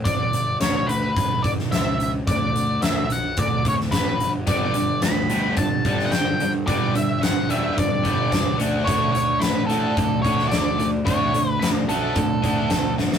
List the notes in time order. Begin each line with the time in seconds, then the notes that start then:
0.05 G1 D5, kick, closed hi-hat
0.32 G1, closed hi-hat
0.60 D2 C#5, snare, closed hi-hat
0.87 D2 B4, closed hi-hat
1.17 G1, kick, closed hi-hat
1.43 G1 D5, kick, closed hi-hat
1.59 snare
1.71 C#2 E5, snare, closed hi-hat
2.00 closed hi-hat
2.27 D2 D5, kick, closed hi-hat
2.54 D2, closed hi-hat
2.82 D2 E5, snare, closed hi-hat
3.09 B1 F#5, closed hi-hat
3.37 D2 D5, kick, closed hi-hat
3.65 D2 C#5, kick, closed hi-hat
3.80 snare
3.91 A1 B4, kick, snare, closed hi-hat
4.20 G1, closed hi-hat
4.47 G1 G2 D3 G3 B3 D4 D5, kick, closed hi-hat
4.74 G1 G2 D3 G3 D4, closed hi-hat
5.02 D2 G2 D3 G3 D4 B5, snare, closed hi-hat
5.30 D2 G2 D3 G3 B3 D4, closed hi-hat
5.57 G1 G2 D3 G3 D4 A5, kick, closed hi-hat
5.85 G1 G2 D3 G3 B3 D4 A5, kick, closed hi-hat
5.99 snare
6.06 F#5
6.12 G1 G2 D3 G3 D4 G5, snare, closed hi-hat
6.40 G2 D3 G3 D4, closed hi-hat
6.67 G1 G2 D3 G3 B3 D4 D5, kick, closed hi-hat
6.94 G1 G2 D3 G3 D4 E5, closed hi-hat
7.21 G1 G2 D3 G3 D4 F#5, snare, closed hi-hat
7.49 E1 G2 D3 G3 B3 D4 E5, closed hi-hat
7.77 G1 G2 D3 G3 D4 D5, kick, closed hi-hat
8.03 G1 G2 D3 G3 B3 D4, kick, closed hi-hat
8.30 C#2 G2 D3 G3 D4, kick, snare, closed hi-hat
8.58 D2 D3 A3 D4 F#4, closed hi-hat
8.85 D2 D3 A3 D4 C#5, kick, closed hi-hat
8.89 D3 D4 F#4
9.11 D2 D3 A3 C#5, closed hi-hat
9.16 D3 D4
9.40 A1 D3 A3 B4, snare, closed hi-hat
9.44 D4
9.66 A2 D3 A3 D4 A4, closed hi-hat
9.71 D4 F#4
9.97 D2 D3 A3 D4, kick, closed hi-hat
10.22 D2 D3 A3 D4 C#5, kick, closed hi-hat
10.27 F#4
10.39 snare
10.48 D3 A3 D5, closed hi-hat
10.52 D2 D3 D4, snare
10.78 D3 A3 D4, closed hi-hat
11.05 D2 D3 A3 D4 F#4 C#5, kick, closed hi-hat
11.34 D2 D3 A3 D4, closed hi-hat
11.50 B4
11.60 D2 D3 A3 D4 B4, snare, closed hi-hat
11.88 B1 D3 A3 D4 F#4 A4, closed hi-hat
12.15 D2 D3 A3 D4, kick, closed hi-hat
12.42 D2 D3 A3 D4 F#4, kick, closed hi-hat
12.70 D2 D3 A3 D4, kick, snare, closed hi-hat
12.97 G1 D3 A3 D4, snare
13.12 snare